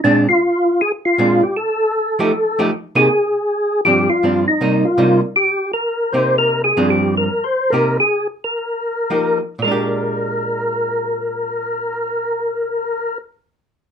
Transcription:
0.04 0.26 A#2 medium
0.04 0.26 G#3 medium
0.04 0.26 C4 medium
0.04 0.27 D4 medium
0.29 0.81 F4 medium
0.81 0.92 G#4 medium
1.05 1.44 F4 medium
1.18 1.40 A#2 medium
1.18 1.41 G#3 medium
1.18 1.41 C4 soft
1.18 1.41 D4 medium
1.43 1.56 G4 medium
1.57 2.66 A4 medium
2.19 2.31 F3 medium
2.19 2.31 A3 medium
2.19 2.31 D#4 medium
2.19 2.31 G4 medium
2.59 2.70 F3 medium
2.59 2.70 A3 medium
2.59 2.70 D#4 medium
2.59 2.70 G4 medium
2.95 3.07 C3 medium
2.95 3.07 A#3 medium
2.95 3.07 D#4 medium
2.95 3.08 G4 medium
2.95 3.81 G#4 medium
3.85 4.07 G2 medium
3.85 4.07 F3 medium
3.85 4.07 C4 medium
3.85 4.08 D4 medium
3.85 4.10 G4 medium
4.10 4.45 F4 medium
4.23 4.45 G2 soft
4.23 4.45 F3 soft
4.23 4.45 C4 soft
4.23 4.45 D4 soft
4.48 4.87 D#4 medium
4.61 4.83 C3 soft
4.61 4.83 G3 medium
4.61 4.83 A#3 medium
4.61 4.83 D#4 medium
4.85 5.20 F4 medium
4.98 5.20 C3 medium
4.98 5.20 G3 medium
4.98 5.20 A#3 medium
4.98 5.21 D#4 medium
5.36 5.72 G4 medium
5.74 6.13 A#4 medium
6.12 6.71 C3 soft
6.12 6.72 A#3 soft
6.12 6.72 D#4 soft
6.12 6.72 G4 medium
6.12 6.36 C5 medium
6.38 6.62 A#4 medium
6.64 6.91 G#4 medium
6.77 7.27 G2 medium
6.77 7.27 F3 medium
6.77 7.28 C4 medium
6.77 7.28 D4 medium
6.90 7.15 G4 medium
7.17 7.45 A#4 medium
7.44 7.72 C5 medium
7.70 7.97 C3 soft
7.70 7.97 A#3 medium
7.70 7.97 D#4 medium
7.70 7.98 G4 medium
7.70 7.97 A#4 medium
8.00 8.27 G#4 medium
8.44 9.38 A#4 medium
9.10 9.39 F3 soft
9.10 9.40 A#3 medium
9.10 9.40 D#4 medium
9.10 9.40 G4 soft
9.59 13.18 A#2 medium
9.59 13.18 A#4 medium
9.64 13.24 G#3 soft
9.64 13.27 D4 medium
9.71 13.31 G4 medium

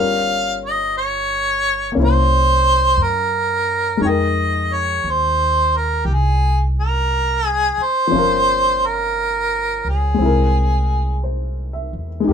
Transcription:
0.00 1.93 G1 medium
0.00 1.94 G3 soft
0.00 1.94 C#4 soft
0.00 1.97 F4 soft
0.00 1.99 A#4 medium
0.00 0.57 F5 medium
0.65 0.95 D#5 medium
0.97 1.94 C#5 medium
1.92 3.99 A#3 soft
1.92 4.01 C#4 soft
1.96 2.95 C2 medium
1.96 4.03 E4 soft
2.02 4.04 C5 soft
2.02 3.05 C5 medium
2.97 3.97 F#2 medium
3.03 4.04 A#4 medium
3.97 5.00 F2 medium
3.97 8.11 G#3 soft
3.97 8.13 D#4 soft
4.02 4.09 C#5 medium
4.02 8.14 G5 soft
4.08 8.16 A#4 soft
4.08 4.75 D#5 medium
4.74 5.12 C#5 medium
5.04 6.03 D#2 medium
5.10 5.79 C5 medium
5.77 6.07 A#4 medium
6.05 7.73 C2 medium
6.05 6.15 G4 medium
6.14 6.62 G#4 medium
6.79 7.47 A#4 medium
7.47 7.84 G#4 medium
7.78 muted upright bass stroke soft
7.83 8.88 C5 medium
8.07 10.17 F3 medium
8.12 9.80 G1 medium
8.12 10.19 C#4 soft
8.12 10.21 F4 medium
8.18 10.22 A#4 medium
8.86 9.87 A#4 medium
9.85 10.17 C#2 medium
9.89 11.23 G#4 medium
10.14 12.19 G#3 soft
10.14 12.28 C4 soft
10.20 11.89 C2 medium
10.20 12.30 E4 soft
10.25 12.29 A#4 medium
11.24 12.07 C5 soft
11.73 12.33 E5 soft
11.93 12.26 E2 medium
12.20 12.33 G#3 medium
12.24 12.33 F2 medium
12.24 12.33 D#4 soft
12.24 12.33 G4 soft

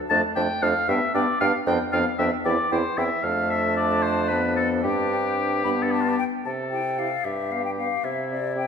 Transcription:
0.09 0.22 F2 medium
0.09 0.22 A3 medium
0.09 0.22 D4 medium
0.09 0.15 A5 medium
0.09 0.22 A5 medium
0.36 0.48 F2 medium
0.36 0.49 A3 medium
0.36 0.48 D4 medium
0.36 0.64 G5 loud
0.36 0.42 A5 medium
0.62 0.74 F2 medium
0.62 0.74 A3 medium
0.62 0.74 D4 medium
0.62 0.90 F5 medium
0.62 0.68 A5 medium
0.88 1.00 G2 medium
0.88 1.01 B3 medium
0.88 1.00 D4 medium
0.88 1.14 E5 medium
0.88 0.94 G5 medium
1.14 1.26 G2 medium
1.14 1.27 B3 medium
1.14 1.26 D4 medium
1.14 1.40 D5 medium
1.14 1.21 G5 medium
1.40 1.52 G2 medium
1.40 1.53 B3 medium
1.40 1.53 D4 medium
1.40 1.52 F5 medium
1.40 1.46 G5 medium
1.66 1.78 F2 medium
1.66 1.79 B3 medium
1.66 1.79 D4 medium
1.66 1.72 G5 medium
1.66 1.79 G5 medium
1.92 2.04 F2 medium
1.92 2.05 B3 medium
1.92 2.05 D4 medium
1.92 2.04 F5 medium
1.92 1.98 G5 medium
2.18 2.30 F2 medium
2.18 2.31 B3 medium
2.18 2.31 D4 medium
2.18 2.31 E5 medium
2.18 2.24 G5 soft
2.44 2.57 E2 medium
2.44 2.58 C4 medium
2.44 2.57 E4 medium
2.44 2.71 D5 medium
2.44 2.50 G5 medium
2.71 2.83 E2 medium
2.71 2.84 C4 medium
2.71 2.83 E4 medium
2.71 2.99 C5 medium
2.71 2.77 G5 medium
2.97 3.09 E2 medium
2.97 3.10 C4 soft
2.97 3.10 E4 medium
2.97 3.25 E5 medium
2.97 3.04 G5 medium
3.23 4.79 F2 medium
3.23 4.32 A3 medium
3.23 4.80 D4 medium
3.23 3.52 F5 medium
3.23 4.85 A5 medium
3.50 3.76 E5 medium
3.77 4.04 D5 medium
4.03 4.30 C5 medium
4.28 4.83 B3 medium
4.28 4.56 B4 medium
4.57 4.69 A4 medium
4.83 5.63 G2 medium
4.83 5.63 C4 medium
4.83 5.63 D4 medium
4.83 5.84 G4 medium
4.83 5.63 G5 medium
5.64 6.18 G2 medium
5.64 6.18 B3 soft
5.64 6.18 D4 soft
5.64 5.70 B5 medium
5.82 5.93 A4 medium
5.91 6.03 G4 medium
5.91 6.18 A5 medium
6.01 6.11 F4 soft
6.09 6.19 G4 medium
6.18 6.24 G5 medium
6.45 7.12 C3 soft
6.45 7.26 A4 soft
6.45 6.51 A5 soft
6.71 6.82 E4 soft
6.71 6.82 G4 soft
6.71 7.00 G5 soft
6.98 7.08 E4 soft
6.98 7.08 G4 soft
6.98 7.26 F5 soft
7.24 7.91 G2 soft
7.24 8.06 G4 soft
7.24 7.53 E5 soft
7.51 7.61 B3 soft
7.51 7.61 G4 soft
7.51 7.64 F5 soft
7.65 7.71 G5 soft
7.77 7.87 B3 soft
7.77 7.87 G4 soft
7.77 8.05 F5 soft
8.04 8.67 C3 soft
8.04 8.67 E4 soft
8.04 8.30 E5 soft
8.29 8.39 C4 soft
8.29 8.40 G4 soft
8.29 8.56 D5 soft
8.56 8.65 C4 soft
8.56 8.66 G4 soft
8.56 8.67 G5 soft

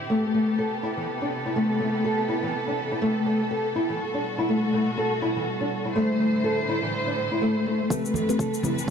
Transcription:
0.00 3.96 G4 medium
0.10 3.96 C3 medium
0.10 0.23 A3 medium
0.10 3.96 B3 medium
0.10 5.91 A4 medium
0.34 0.47 A3 medium
0.59 0.72 A4 medium
0.83 0.91 E4 medium
0.97 1.06 E3 medium
1.22 1.27 D4 medium
1.46 1.56 E4 medium
1.56 1.69 A3 medium
1.80 1.93 A3 medium
2.05 2.18 A4 medium
2.29 2.37 E4 medium
2.43 2.53 E3 medium
2.68 2.73 D4 medium
2.92 3.02 E4 medium
3.02 3.15 A3 loud
3.26 3.39 A3 medium
3.51 3.65 A4 medium
3.75 3.83 E4 medium
3.89 3.99 E3 medium
4.00 5.93 B2 medium
4.00 7.87 G3 medium
4.00 5.93 F#4 medium
4.14 4.20 D4 medium
4.38 4.48 E4 medium
4.49 4.62 A3 medium
4.73 4.86 A3 medium
4.98 5.11 A4 medium
5.22 5.30 E4 medium
5.36 5.46 E3 medium
5.61 5.66 D4 medium
5.85 5.95 E4 medium
5.95 7.89 A2 medium
5.95 7.88 D3 medium
5.95 6.08 A3 medium
5.95 7.88 E4 medium
5.95 7.89 C5 medium
6.20 6.33 A3 medium
6.44 6.58 A4 medium
6.69 6.76 E4 medium
6.83 6.92 E3 medium
7.07 7.13 D4 medium
7.31 7.41 E4 medium
7.42 7.54 A3 medium
7.66 7.79 A3 medium
7.90 8.90 G3 medium
7.90 8.03 A3 medium
7.90 8.03 A3 loud
7.90 8.90 C4 medium
7.90 8.03 C4 medium
7.90 8.03 G4 medium
7.90 8.90 A4 medium
7.90 8.90 B4 medium
7.90 8.03 B4 loud
7.90 kick loud
7.90 mid tom soft
7.90 cabasa medium
8.05 cabasa soft
8.14 8.28 A3 medium
8.14 low conga loud
8.14 cabasa soft
8.29 8.38 A3 medium
8.29 8.38 C4 medium
8.29 8.38 G4 medium
8.29 8.38 B4 medium
8.29 muted conga medium
8.29 cabasa soft
8.39 8.53 A4 medium
8.39 kick loud
8.39 mid tom soft
8.39 cabasa soft
8.54 cabasa soft
8.63 8.77 A3 medium
8.63 8.77 C4 medium
8.63 8.71 E4 medium
8.63 8.77 G4 medium
8.63 8.77 B4 medium
8.63 mid tom medium
8.63 muted conga soft
8.63 low conga loud
8.63 cabasa medium
8.78 8.87 E3 medium
8.78 cabasa medium

